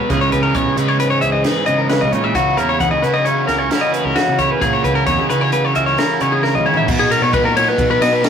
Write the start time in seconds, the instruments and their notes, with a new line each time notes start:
Already playing: clean electric guitar D#4, overdriven electric guitar D#4
0.00 clean electric guitar B4
0.09 picked electric bass C#2, overdriven electric guitar C#3 E3 G#3 C#4, clean electric guitar C#3 G#3 B3 D#4 G#4, kick, closed hi-hat
0.13 clean electric guitar G#4
0.21 clean electric guitar C#5
0.32 picked electric bass C#2, clean electric guitar D#4 B4, kick, closed hi-hat
0.43 clean electric guitar A#4
0.55 picked electric bass B1, clean electric guitar B3 C#5, kick, closed hi-hat
0.67 picked electric bass C#3
0.76 picked electric bass C#3, overdriven electric guitar C#3 E3 G#3 C#4, clean electric guitar D#4 B4, closed hi-hat
0.88 clean electric guitar C#5
1.00 clean electric guitar G#2 B4, closed hi-hat
1.10 clean electric guitar C#5
1.21 picked electric bass C#2, clean electric guitar G#4 E5, closed hi-hat
1.32 clean electric guitar D#5
1.43 overdriven electric guitar C#3 E3 G#3 C#4, clean electric guitar D#4 B4, snare, closed hi-hat
1.66 picked electric bass C#3, clean electric guitar B3 D#5, closed hi-hat
1.78 clean electric guitar A#4
1.89 clean electric guitar C#3 B4, snare, closed hi-hat
2.01 picked electric bass C#2, clean electric guitar D#5
2.12 picked electric bass A#2, clean electric guitar D#4 C#5, closed hi-hat
2.24 picked electric bass A#2, clean electric guitar E5
2.35 picked electric bass C#2, overdriven electric guitar C#3 E3 A#3 C#4 F#4, clean electric guitar C#3 F#4, kick, closed hi-hat
2.57 picked electric bass E2, clean electric guitar E4 A#4, closed hi-hat
2.69 clean electric guitar C#5
2.80 picked electric bass E2, clean electric guitar D#4 F#5, kick, closed hi-hat
2.91 picked electric bass C#2, clean electric guitar D#5
3.02 picked electric bass C#3, overdriven electric guitar C#3 E3 A#3 C#4 F#4, clean electric guitar E4 B4, closed hi-hat
3.14 clean electric guitar D#5
3.25 clean electric guitar C#3 C#5, closed hi-hat
3.47 picked electric bass C#2, clean electric guitar A#4, snare, closed hi-hat
3.58 clean electric guitar C#5
3.70 overdriven electric guitar C#3 E3 A#3 C#4 F#4, clean electric guitar E4 A#4, snare, closed hi-hat
3.81 clean electric guitar D#5
3.93 clean electric guitar D#4 B4, closed hi-hat
4.04 picked electric bass C#2, clean electric guitar A#4
4.16 clean electric guitar C#3 F#4, snare, closed hi-hat
4.28 picked electric bass C#3
4.39 clean electric guitar E4 C#5, kick, closed hi-hat
4.51 clean electric guitar B4
4.61 picked electric bass A#2, overdriven electric guitar C#3 E3 A#3 C#4 F#4, clean electric guitar C#3 G#4, kick, closed hi-hat
4.73 clean electric guitar C#5
4.84 picked electric bass C#2, clean electric guitar E4 B4, kick, closed hi-hat
4.95 clean electric guitar A#4
5.06 picked electric bass E2, clean electric guitar D#4 C#5, kick, snare, closed hi-hat
5.19 picked electric bass C#3
5.29 picked electric bass C#3, overdriven electric guitar C#3 E3 A#3 C#4 F#4, clean electric guitar E4 B4, closed hi-hat
5.41 clean electric guitar C#5
5.52 clean electric guitar C#3 B4, closed hi-hat
5.65 clean electric guitar C#5
5.75 picked electric bass C#2, clean electric guitar A#4 E5, closed hi-hat
5.86 clean electric guitar C#5
5.97 overdriven electric guitar C#3 E3 A#3 C#4 F#4, clean electric guitar E4 A#4, snare, closed hi-hat
6.21 picked electric bass C#3, clean electric guitar D#4 C#5, closed hi-hat
6.32 clean electric guitar G#4
6.42 clean electric guitar C#3 A#4, snare
6.55 picked electric bass C#2, clean electric guitar D#5, mid tom
6.66 picked electric bass D#3, clean electric guitar E4 C#5
6.74 picked electric bass D#3, clean electric guitar E5, floor tom
6.88 overdriven electric guitar B2 F#3 B3 D#4, picked electric bass B2, kick, crash
6.99 clean electric guitar G#4
7.11 clean electric guitar A#4, ride
7.22 picked electric bass B2, clean electric guitar C#5
7.32 overdriven electric guitar B2 F#3 B3 D#4, clean electric guitar B4, kick, ride
7.45 picked electric bass A#2, clean electric guitar A#4
7.55 overdriven electric guitar F#3 B3 D#4, clean electric guitar C#5, ride
7.68 clean electric guitar B4
7.78 picked electric bass B2, kick, ride
7.91 clean electric guitar B4
8.01 picked electric bass B2, clean electric guitar D#5, snare, ride
8.13 clean electric guitar B4
8.22 overdriven electric guitar B2 F#3 B3 D#4, clean electric guitar A#4, snare, ride